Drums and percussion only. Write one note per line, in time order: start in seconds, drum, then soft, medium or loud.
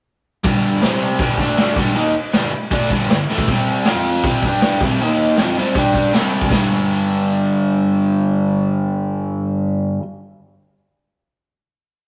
0.44 kick loud
0.44 crash medium
0.81 snare loud
0.81 crash medium
1.19 kick loud
1.19 crash medium
1.38 kick medium
1.57 snare loud
1.57 crash medium
1.76 kick loud
1.96 crash medium
2.33 snare loud
2.33 crash medium
2.71 kick loud
2.71 crash medium
2.90 kick medium
3.10 snare loud
3.10 crash medium
3.38 kick medium
3.48 kick loud
3.48 crash medium
3.84 snare loud
3.84 crash medium
4.23 kick loud
4.23 crash medium
4.43 kick medium
4.61 snare loud
4.61 crash medium
4.81 kick loud
5.00 crash medium
5.37 snare loud
5.37 crash medium
5.75 kick loud
5.75 crash medium
5.94 kick medium
6.14 snare loud
6.14 crash medium
6.41 kick medium
6.50 kick loud
6.50 snare medium
6.50 open hi-hat medium